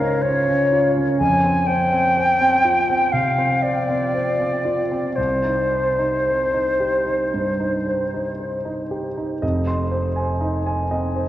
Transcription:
0.00 1.22 G#2 soft
0.00 0.48 C#4 soft
0.00 0.72 F4 soft
0.00 0.24 A#4 medium
0.00 0.24 C5 soft
0.22 0.63 C5 soft
0.22 0.92 C#5 medium
0.48 0.87 C#4 soft
0.72 1.11 F4 soft
0.97 1.20 C#4 soft
1.19 3.10 F2 soft
1.19 1.68 G#5 medium
1.44 1.82 C4 soft
1.66 2.06 C5 soft
1.66 3.14 G5 medium
1.92 2.31 C4 soft
2.17 2.55 C5 soft
2.41 2.79 C4 soft
2.65 3.04 F4 soft
2.90 3.29 C4 soft
3.12 3.53 C3 soft
3.12 3.64 F5 medium
3.38 3.78 C4 soft
3.62 4.04 C5 soft
3.62 5.17 D5 medium
3.89 4.29 C4 soft
4.15 4.55 C5 soft
4.40 4.81 C4 soft
4.65 5.07 F4 soft
4.92 5.18 C4 soft
5.16 7.30 C2 soft
5.16 8.38 C5 medium
5.44 5.88 D#4 soft
5.72 6.16 C5 soft
5.99 6.42 D#4 soft
6.27 6.70 C5 soft
6.54 6.96 D#4 soft
6.80 7.23 G4 soft
7.06 7.49 D#4 soft
7.34 7.76 G2 soft
7.60 8.02 D#4 soft
7.87 8.29 C5 soft
8.14 8.55 D#4 soft
8.40 8.81 C5 soft
8.65 9.07 D#4 soft
8.91 9.32 G4 soft
9.18 9.43 D#4 soft
9.42 11.29 F1 medium
9.42 9.82 D#5 soft
9.67 10.07 C6 soft
9.91 10.32 C5 soft
10.16 10.57 G#5 soft
10.41 11.21 D#4 soft
10.41 10.82 D#5 soft
10.66 11.06 G#5 soft
10.91 11.29 C4 soft
10.91 11.29 D#5 soft
11.16 11.29 C5 soft

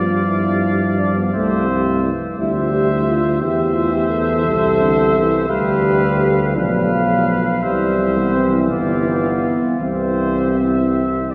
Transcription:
0.00 1.30 G2 soft
0.00 1.30 F3 medium
0.00 0.27 F4 medium
0.00 1.17 D5 medium
0.00 1.30 F5 medium
0.28 0.99 E4 medium
0.98 1.16 D4 medium
1.16 1.32 B3 medium
1.33 2.10 C2 soft
1.33 1.70 A3 medium
1.33 2.09 C4 medium
1.33 2.09 C5 medium
1.33 2.09 E5 medium
1.69 2.06 G3 medium
2.04 2.38 E3 medium
2.37 3.44 D2 soft
2.37 3.13 G3 medium
2.37 2.54 E4 medium
2.37 3.37 C5 medium
2.37 3.37 E5 medium
2.56 2.72 F4 medium
2.73 2.90 G4 medium
2.91 3.07 E4 medium
3.07 3.42 F4 medium
3.40 4.47 E2 medium
3.40 4.41 E3 medium
3.40 3.76 G4 medium
3.40 5.46 C5 medium
3.40 5.51 E5 medium
3.75 3.94 F4 medium
3.93 4.09 G4 medium
4.10 5.47 A4 medium
4.45 5.50 C2 medium
4.45 4.82 C3 medium
4.81 5.15 D3 medium
5.16 5.49 E3 medium
5.49 6.59 D2 medium
5.49 6.58 G3 medium
5.49 6.54 G4 medium
5.49 6.54 B4 medium
5.49 6.56 F5 medium
6.55 7.62 B1 medium
6.55 7.62 F3 medium
6.55 6.91 D4 medium
6.55 7.63 B4 medium
6.55 7.65 F5 medium
7.62 8.71 C2 medium
7.62 9.76 E3 medium
7.62 8.19 G3 medium
7.62 8.53 C5 medium
7.62 8.70 E5 medium
8.17 8.36 B3 medium
8.34 8.69 C4 medium
8.70 9.51 G1 medium
8.70 9.06 B3 medium
8.70 9.50 D5 soft
8.70 9.50 F5 soft
9.07 9.79 B3 medium
9.80 11.35 C2 soft
9.80 11.35 E3 medium
9.80 11.35 C4 medium
9.80 10.83 C5 soft
9.80 11.35 E5 soft
10.95 11.32 E5 soft
11.31 11.35 D5 soft

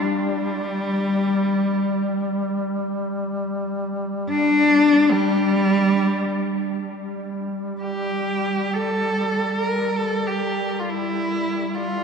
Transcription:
0.00 2.60 G3 medium
0.00 6.78 G3 soft
4.29 5.13 D4 loud
5.11 6.73 G3 medium
6.95 12.04 G3 soft
7.81 8.74 G4 medium
8.73 9.49 A4 medium
9.49 9.61 A4 medium
9.61 9.97 A#4 medium
9.96 10.28 A4 medium
10.27 10.81 G4 medium
10.79 10.91 F4 soft
10.89 11.76 E4 medium
11.75 12.04 F4 medium

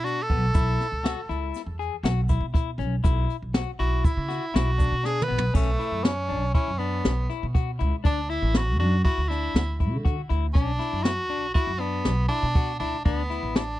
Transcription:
0.00 0.31 B2 medium
0.04 0.20 D4 medium
0.04 0.24 F#4 loud
0.04 closed hi-hat medium
0.22 1.47 A4 loud
0.30 0.51 B1 medium
0.30 0.45 B3 medium
0.30 kick medium
0.30 closed hi-hat medium
0.54 0.76 B1 medium
0.54 0.86 E4 medium
0.54 kick loud
0.54 closed hi-hat medium
0.54 shaker medium
0.80 snare soft
0.80 closed hi-hat medium
0.92 1.13 C#2 medium
1.04 1.20 F#4 medium
1.04 snare loud
1.04 closed hi-hat medium
1.29 1.50 C#2 medium
1.29 1.61 E4 medium
1.29 snare soft
1.29 closed hi-hat medium
1.54 snare soft
1.54 closed hi-hat medium
1.54 shaker medium
1.66 1.88 E2 medium
1.79 1.95 G#4 medium
1.79 closed hi-hat medium
2.03 2.35 B1 loud
2.03 2.20 F#4 medium
2.03 snare loud
2.03 closed hi-hat medium
2.03 shaker soft
2.29 2.45 E4 medium
2.29 kick medium
2.29 closed hi-hat medium
2.29 shaker soft
2.41 2.80 B2 medium
2.54 2.70 E4 medium
2.54 kick loud
2.54 closed hi-hat medium
2.78 3.00 B1 medium
2.78 2.95 C#4 medium
2.78 closed hi-hat medium
3.04 3.26 B1 loud
3.04 3.36 E4 medium
3.04 kick loud
3.04 closed hi-hat medium
3.04 shaker medium
3.30 closed hi-hat medium
3.42 3.63 B1 medium
3.54 3.70 F#4 medium
3.54 snare loud
3.54 closed hi-hat medium
3.79 4.00 B1 medium
3.79 4.11 E4 medium
3.79 4.06 F#4 medium
3.79 closed hi-hat medium
4.04 4.56 E4 medium
4.04 kick loud
4.04 closed hi-hat medium
4.04 shaker medium
4.17 4.38 C#3 medium
4.29 4.45 F#4 medium
4.29 snare soft
4.29 closed hi-hat medium
4.29 shaker soft
4.54 4.86 B1 medium
4.54 4.70 E4 medium
4.54 5.07 F#4 loud
4.54 snare loud
4.54 closed hi-hat medium
4.78 4.94 D4 medium
4.78 kick medium
4.78 closed hi-hat medium
4.78 shaker soft
4.92 5.31 B2 medium
5.04 5.20 D4 medium
5.04 5.24 G#4 loud
5.04 snare soft
5.04 shaker soft
5.22 5.55 B4 medium
5.22 mid tom medium
5.28 5.51 B1 medium
5.28 5.44 B3 medium
5.38 floor tom loud
5.54 5.75 B1 medium
5.54 6.05 A3 medium
5.54 5.70 C#4 medium
5.54 kick loud
5.54 crash loud
5.79 6.11 E4 medium
5.79 closed hi-hat medium
5.92 6.32 F#2 medium
6.04 6.54 C#4 loud
6.04 snare loud
6.04 closed hi-hat medium
6.29 6.51 B1 medium
6.29 6.45 D4 medium
6.29 closed hi-hat medium
6.54 6.79 C#4 medium
6.54 6.70 E4 medium
6.54 kick loud
6.54 closed hi-hat medium
6.68 6.99 F#2 medium
6.78 7.29 B3 medium
6.78 7.11 D4 medium
6.78 closed hi-hat medium
7.05 7.26 B1 medium
7.05 snare loud
7.05 closed hi-hat medium
7.30 7.46 E4 medium
7.30 snare soft
7.30 closed hi-hat medium
7.43 7.74 B2 medium
7.55 7.70 F#4 medium
7.55 kick medium
7.55 closed hi-hat medium
7.79 7.91 C#2 medium
7.79 7.95 E4 medium
7.79 snare soft
7.79 closed hi-hat medium
8.04 8.37 D2 medium
8.04 8.20 D4 medium
8.04 8.31 D4 medium
8.04 kick loud
8.04 closed hi-hat medium
8.30 8.58 E4 medium
8.30 8.61 E4 medium
8.30 closed hi-hat medium
8.42 8.80 A1 medium
8.54 8.79 F#4 medium
8.54 snare loud
8.54 closed hi-hat medium
8.80 9.01 F#2 medium
8.80 8.96 D4 medium
8.80 9.03 F#4 medium
8.80 closed hi-hat medium
9.05 9.21 E4 medium
9.05 9.29 F#4 medium
9.05 kick loud
9.05 closed hi-hat medium
9.18 9.49 D2 medium
9.28 9.62 D4 medium
9.28 9.79 E4 medium
9.28 snare soft
9.28 closed hi-hat medium
9.55 9.92 D2 loud
9.55 snare loud
9.55 closed hi-hat medium
9.80 9.96 E4 medium
9.80 kick medium
9.80 closed hi-hat medium
9.92 10.14 D3 medium
10.05 10.21 F#4 medium
10.05 kick loud
10.05 closed hi-hat medium
10.29 10.51 D2 loud
10.29 10.46 E4 medium
10.29 closed hi-hat medium
10.53 10.76 B1 medium
10.53 10.71 C#4 medium
10.53 11.05 D4 medium
10.53 kick loud
10.53 closed hi-hat medium
10.79 11.11 E4 medium
10.79 snare soft
10.79 closed hi-hat medium
10.93 11.30 F#2 medium
11.03 11.53 F#4 loud
11.03 snare loud
11.03 closed hi-hat medium
11.30 11.51 B1 medium
11.30 11.46 D4 medium
11.30 closed hi-hat medium
11.54 11.71 E4 medium
11.54 11.81 F#4 loud
11.54 kick medium
11.54 closed hi-hat medium
11.67 11.99 F#2 medium
11.80 12.28 B3 medium
11.80 12.12 D4 medium
11.80 closed hi-hat medium
12.05 12.26 B1 medium
12.05 snare loud
12.05 closed hi-hat medium
12.28 12.76 D4 loud
12.28 12.46 E4 medium
12.28 closed hi-hat medium
12.43 12.75 B2 medium
12.55 12.72 F#4 medium
12.55 kick loud
12.55 closed hi-hat medium
12.80 12.91 C#2 medium
12.80 13.03 D4 medium
12.80 12.96 E4 medium
12.80 closed hi-hat medium
13.05 13.37 D2 loud
13.05 13.58 B3 medium
13.05 13.21 D4 loud
13.05 kick loud
13.05 closed hi-hat medium
13.30 13.62 E4 medium
13.30 snare soft
13.30 closed hi-hat medium
13.43 13.80 A1 medium
13.56 13.80 D4 medium
13.56 snare loud
13.56 closed hi-hat medium

